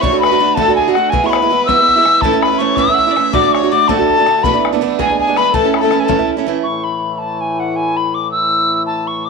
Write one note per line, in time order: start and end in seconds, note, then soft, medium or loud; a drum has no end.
0.01 0.13 D2 medium
0.01 0.13 A2 medium
0.01 0.12 D3 medium
0.01 0.12 A3 medium
0.01 0.11 D4 medium
0.01 0.10 F#4 medium
0.01 0.21 C#5 medium
0.01 0.19 C#6 loud
0.01 bodhran medium
0.11 0.32 D3 soft
0.11 0.32 A3 soft
0.11 0.31 D4 soft
0.11 0.30 F#4 soft
0.20 0.55 B4 medium
0.20 0.56 B5 loud
0.20 bodhran medium
0.32 0.37 D3 soft
0.32 0.39 A3 soft
0.32 0.39 D4 medium
0.32 0.39 F#4 medium
0.39 0.56 D3 medium
0.39 0.57 A3 medium
0.39 0.57 D4 medium
0.39 0.57 F#4 medium
0.55 0.68 D2 medium
0.55 0.68 A2 medium
0.55 0.68 D3 medium
0.55 0.68 A3 medium
0.55 0.68 D4 medium
0.55 0.67 F#4 medium
0.55 0.77 A4 medium
0.55 0.75 A5 loud
0.55 bodhran medium
0.67 0.88 D3 soft
0.67 0.88 A3 soft
0.67 0.87 D4 soft
0.67 0.86 F#4 soft
0.67 bodhran soft
0.75 0.97 G#4 medium
0.75 0.91 G#5 medium
0.75 bodhran soft
0.88 0.94 D3 soft
0.88 0.95 A3 medium
0.88 0.96 D4 medium
0.88 0.96 F#4 medium
0.92 1.12 D3 soft
0.92 1.15 F#4 medium
0.92 1.11 F#5 loud
0.92 bodhran soft
0.96 1.13 A3 medium
0.96 1.14 D4 medium
0.96 1.14 F#4 medium
1.10 1.23 E3 medium
1.10 1.23 G#3 medium
1.10 1.27 G#5 loud
1.10 bodhran medium
1.14 1.23 B3 medium
1.14 1.22 E4 medium
1.14 1.26 G#4 medium
1.24 1.43 G#3 soft
1.24 1.42 B3 soft
1.24 1.41 E4 soft
1.24 1.37 C#5 medium
1.24 1.31 C#6 medium
1.30 1.65 B5 medium
1.30 bodhran medium
1.35 1.70 B4 medium
1.42 1.50 G#3 soft
1.42 1.51 B3 medium
1.42 1.51 E4 medium
1.50 1.67 E3 medium
1.50 1.68 G#3 medium
1.50 1.68 B3 medium
1.50 1.68 E4 medium
1.65 1.78 E3 medium
1.65 1.79 G#3 medium
1.65 1.78 B3 medium
1.65 2.23 E5 medium
1.65 2.23 E6 loud
1.65 bodhran medium
1.69 1.77 E4 medium
1.78 1.97 G#3 soft
1.78 1.96 B3 soft
1.78 1.94 E4 soft
1.89 bodhran soft
1.96 2.04 G#3 soft
1.96 2.05 B3 soft
1.96 2.05 E4 medium
2.05 2.23 E3 soft
2.05 2.23 G#3 medium
2.05 2.23 B3 soft
2.05 2.24 E4 medium
2.05 bodhran medium
2.21 2.33 A2 medium
2.21 2.34 E3 medium
2.21 2.33 A3 medium
2.21 2.33 C#4 medium
2.21 2.32 E4 medium
2.21 2.42 A4 medium
2.21 2.44 A5 loud
2.21 bodhran medium
2.33 2.53 A3 soft
2.33 2.52 C#4 soft
2.33 2.51 E4 medium
2.42 2.63 B4 medium
2.42 2.60 B5 medium
2.42 bodhran medium
2.52 2.59 A3 soft
2.52 2.60 C#4 soft
2.52 2.60 E4 soft
2.58 2.77 E3 medium
2.58 2.78 A3 medium
2.58 2.78 C#4 medium
2.58 2.78 E4 medium
2.58 2.80 C#5 medium
2.58 2.78 C#6 medium
2.76 2.88 A2 medium
2.76 2.88 E3 medium
2.76 2.88 A3 medium
2.76 2.88 C#4 medium
2.76 2.87 E4 medium
2.76 2.95 E5 medium
2.76 3.32 E6 loud
2.76 bodhran medium
2.87 3.07 A3 soft
2.87 3.07 C#4 soft
2.87 3.05 E4 soft
2.87 bodhran soft
2.93 3.00 F#5 medium
2.98 3.12 E5 medium
2.98 bodhran soft
3.07 3.16 A3 medium
3.07 3.16 C#4 soft
3.07 3.16 E4 medium
3.11 3.17 D5 medium
3.15 3.33 E3 soft
3.15 3.33 A3 medium
3.15 3.34 C#4 medium
3.15 3.34 E4 medium
3.15 3.35 E5 medium
3.15 bodhran medium
3.33 3.43 D2 medium
3.33 3.44 A2 medium
3.33 3.44 D3 medium
3.33 3.43 A3 medium
3.33 3.43 D4 medium
3.33 3.42 F#4 medium
3.33 3.54 D5 medium
3.33 3.54 D6 medium
3.33 bodhran medium
3.43 3.63 D3 soft
3.43 3.63 A3 soft
3.43 3.62 D4 soft
3.43 3.62 F#4 soft
3.53 3.74 C#5 medium
3.53 3.70 C#6 medium
3.53 bodhran medium
3.63 3.70 D3 soft
3.63 3.70 A3 soft
3.63 3.72 D4 soft
3.63 3.72 F#4 medium
3.70 3.88 D3 medium
3.70 3.88 A3 medium
3.70 3.89 D4 medium
3.70 3.89 F#4 medium
3.70 3.91 D5 medium
3.70 3.89 D6 loud
3.88 3.99 D2 medium
3.88 3.99 A2 medium
3.88 3.99 D3 medium
3.88 3.99 A3 medium
3.88 3.98 D4 medium
3.88 3.97 F#4 medium
3.88 4.42 A4 medium
3.88 4.45 A5 loud
3.88 bodhran medium
3.98 4.18 D3 soft
3.98 4.18 A3 soft
3.98 4.17 D4 medium
3.98 4.17 F#4 medium
3.98 bodhran soft
4.09 bodhran soft
4.18 4.25 D3 soft
4.18 4.26 A3 medium
4.18 4.27 D4 medium
4.18 4.26 F#4 soft
4.26 4.44 D3 medium
4.26 4.44 A3 soft
4.26 4.45 D4 medium
4.26 4.45 F#4 medium
4.26 bodhran soft
4.42 4.54 E2 medium
4.42 4.54 B2 medium
4.42 4.54 E3 medium
4.42 4.53 A3 medium
4.42 4.54 B3 medium
4.42 4.52 D4 medium
4.42 4.62 B4 medium
4.42 4.64 B5 medium
4.42 bodhran medium
4.53 4.73 E3 soft
4.53 4.72 A3 medium
4.53 4.73 B3 soft
4.53 4.71 D4 medium
4.65 bodhran medium
4.73 4.80 E3 soft
4.73 4.81 A3 medium
4.73 4.81 B3 medium
4.73 4.81 D4 medium
4.81 4.98 E3 medium
4.81 4.99 A3 medium
4.81 4.99 B3 medium
4.81 4.99 D4 medium
4.98 5.09 E3 medium
4.98 5.09 G#3 medium
4.98 5.10 B3 medium
4.98 5.08 D4 medium
4.98 5.17 G#4 medium
4.98 5.19 G#5 loud
4.98 bodhran medium
5.09 5.28 G#3 soft
5.09 5.27 B3 soft
5.09 5.26 D4 soft
5.09 bodhran soft
5.17 5.34 G#4 medium
5.17 5.39 G#5 medium
5.17 bodhran soft
5.27 5.36 G#3 medium
5.27 5.37 B3 soft
5.27 5.36 D4 medium
5.35 5.53 E3 medium
5.35 5.54 G#3 medium
5.35 5.54 B3 medium
5.35 5.55 D4 medium
5.35 5.51 B4 medium
5.35 5.56 B5 loud
5.35 bodhran medium
5.52 5.64 A2 medium
5.52 5.64 E3 medium
5.52 5.64 A3 medium
5.52 5.63 C#4 medium
5.52 5.62 E4 medium
5.52 5.77 A4 medium
5.52 5.78 A5 medium
5.52 bodhran medium
5.63 5.83 A3 soft
5.63 5.83 C#4 soft
5.63 5.82 E4 soft
5.74 5.82 B5 medium
5.74 bodhran medium
5.80 5.91 C#4 soft
5.80 5.92 E4 medium
5.80 6.02 A4 medium
5.80 6.01 A5 medium
5.85 5.91 A3 soft
5.91 6.07 E3 medium
5.91 6.07 A3 medium
5.91 6.08 C#4 medium
5.91 6.08 E4 medium
5.91 bodhran medium
6.00 6.27 A4 medium
6.00 6.06 G#5 medium
6.04 6.19 A2 medium
6.04 6.30 A5 loud
6.08 6.19 E3 medium
6.08 6.19 A3 medium
6.08 6.19 C#4 medium
6.08 6.18 E4 medium
6.08 bodhran medium
6.19 6.38 A3 soft
6.19 6.37 C#4 soft
6.19 6.36 E4 soft
6.19 bodhran soft
6.28 bodhran soft
6.37 6.47 A3 soft
6.37 6.47 C#4 medium
6.37 6.46 E4 medium
6.46 6.64 E3 medium
6.46 6.65 A3 medium
6.46 6.65 C#4 medium
6.46 6.65 E4 medium
6.63 9.30 A2 medium
6.63 9.30 E3 medium
6.63 6.85 C#6 medium
6.84 7.20 B5 medium
7.18 7.42 A5 medium
7.41 7.61 G#5 medium
7.59 7.77 F#5 medium
7.76 7.98 G#5 medium
7.97 8.16 B5 medium
8.14 8.31 D6 medium
8.31 8.83 E6 loud
8.86 9.09 A5 medium
9.07 9.27 C#6 medium
9.25 9.30 D6 medium